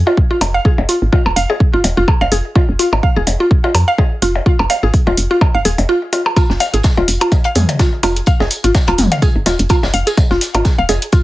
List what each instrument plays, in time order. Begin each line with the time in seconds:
0.07 synth arpeggio sound F4, percussion blips
0.17 kick
0.31 synth arpeggio sound F4
0.41 fm bass F1, open hi-hat, percussion blips
0.54 synth arpeggio sound F5
0.65 synth arpeggio sound G#4, kick
0.78 fm bass F1, percussion blips
0.89 synth arpeggio sound F4, open hi-hat
1.02 fm bass G#1
1.13 synth arpeggio sound F4, kick, percussion blips
1.26 fm bass D#1, percussion blips
1.36 fm bass F1, synth arpeggio sound F5, open hi-hat
1.50 synth arpeggio sound G#4, percussion blips
1.60 kick
1.74 fm bass G1, synth arpeggio sound F4
1.84 fm bass D#1, open hi-hat, percussion blips
1.97 fm bass F1, synth arpeggio sound F4
2.08 kick, percussion blips
2.21 fm bass F1, synth arpeggio sound F5, percussion blips
2.32 fm bass F1, synth arpeggio sound G#4, open hi-hat
2.55 synth arpeggio sound F4, kick, percussion blips
2.69 fm bass F1
2.79 synth arpeggio sound F4, open hi-hat
2.93 fm bass G#1, percussion blips
3.03 synth arpeggio sound F5, kick
3.16 fm bass D#1, synth arpeggio sound G#4
3.27 fm bass F1, open hi-hat, percussion blips
3.40 synth arpeggio sound F4
3.51 kick
3.64 synth arpeggio sound F4, percussion blips
3.75 fm bass F2, open hi-hat, percussion blips
3.88 synth arpeggio sound F5
3.98 synth arpeggio sound G#4, kick, percussion blips
4.22 fm bass F1, synth arpeggio sound F4, open hi-hat
4.35 percussion blips
4.46 synth arpeggio sound F4, kick
4.59 fm bass F1, percussion blips
4.70 synth arpeggio sound F5, open hi-hat, percussion blips
4.83 fm bass G#1, synth arpeggio sound G#4
4.94 kick, open hi-hat
5.07 fm bass D#1, synth arpeggio sound F4, percussion blips
5.17 fm bass F1, open hi-hat
5.31 synth arpeggio sound F4
5.41 kick, percussion blips
5.55 fm bass G1, synth arpeggio sound F5
5.65 fm bass D#1, synth arpeggio sound G#4, open hi-hat
5.78 fm bass F1, open hi-hat, percussion blips
5.89 synth arpeggio sound F4
6.13 synth arpeggio sound F4, open hi-hat, percussion blips
6.26 percussion blips
6.36 synth arpeggio sound F4, kick, closed hi-hat, tambourine, percussion blips
6.50 fm bass F1, snare
6.60 synth arpeggio sound F5, snare, open hi-hat, tambourine, percussion blips
6.74 fm bass G#1, synth arpeggio sound G#4, closed hi-hat
6.83 kick, snare, closed hi-hat, tambourine
6.97 fm bass D#1, synth arpeggio sound F4, percussion blips
7.08 fm bass F1, open hi-hat, tambourine
7.21 synth arpeggio sound F4, closed hi-hat, percussion blips
7.32 kick, closed hi-hat, tambourine, percussion blips
7.44 synth arpeggio sound F5, closed hi-hat
7.55 fm bass F2, synth arpeggio sound G#4, mid tom, open hi-hat, tambourine
7.69 closed hi-hat, percussion blips
7.79 synth arpeggio sound F4, kick, snare, closed hi-hat, tambourine
8.03 fm bass F1, synth arpeggio sound F4, open hi-hat, tambourine, percussion blips
8.16 closed hi-hat
8.26 synth arpeggio sound F5, kick, closed hi-hat, tambourine
8.40 fm bass F1, synth arpeggio sound G#4, snare, percussion blips
8.50 open hi-hat, tambourine
8.64 fm bass G#1, synth arpeggio sound F4, closed hi-hat
8.75 kick, snare, closed hi-hat, tambourine, percussion blips
8.88 fm bass D#1, synth arpeggio sound F4, closed hi-hat, percussion blips
8.98 fm bass F1, mid tom, open hi-hat, tambourine
9.12 synth arpeggio sound F5, snare, closed hi-hat, percussion blips
9.22 synth arpeggio sound G#4, kick, closed hi-hat, tambourine
9.36 fm bass G1
9.46 fm bass D#1, synth arpeggio sound F4, snare, open hi-hat, tambourine, percussion blips
9.59 fm bass F1, closed hi-hat
9.69 synth arpeggio sound F4, kick, closed hi-hat, tambourine, percussion blips
9.83 fm bass F1, snare, tambourine, percussion blips
9.94 fm bass F1, synth arpeggio sound F5, open hi-hat
10.07 synth arpeggio sound G#4, closed hi-hat, tambourine
10.17 kick, closed hi-hat, tambourine, percussion blips
10.31 fm bass F1, synth arpeggio sound F4, snare
10.41 snare, open hi-hat, tambourine
10.55 fm bass G#1, synth arpeggio sound F4, closed hi-hat, percussion blips
10.65 kick, snare, closed hi-hat, tambourine
10.78 fm bass D#1, synth arpeggio sound F5
10.89 fm bass F1, synth arpeggio sound G#4, open hi-hat, tambourine, percussion blips
11.02 closed hi-hat
11.12 synth arpeggio sound F4, kick, closed hi-hat, tambourine